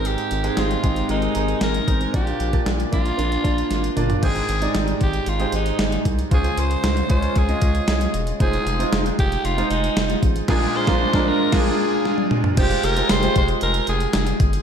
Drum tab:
CC |----------------|----------------|x---------------|----------------|
HH |xxxxxxxxxxxxxxxx|xxxxxxxxxxxxxxxx|xxxxxxxxxxxxxxxx|xxxxxxxxxxxxxxxx|
TB |----------------|----------------|----------------|----------------|
SD |----o-------o---|----o-------o---|----o-------o---|----o-------o---|
T1 |----------------|----------------|----------------|----------------|
T2 |----------------|--------------o-|----------------|----------------|
FT |----------------|---------------o|----------------|----------------|
BD |------o-------o-|o--o--o---o-----|o-----o-------o-|o-----o-o-o-----|

CC |----------------|x-------x-------|x---------------|
HH |xxxxxxxxxxxxxxxx|----------------|xxxxxxxxxxxxxxxx|
TB |----------------|----------------|----x-------x---|
SD |----o-------o---|o--o-o--o---o---|----o-------o---|
T1 |----------------|-------------o--|----------------|
T2 |----------------|--------------o-|----------------|
FT |----------------|---------------o|----------------|
BD |o-----o-------o-|o--o-o--o-------|o-----o-------o-|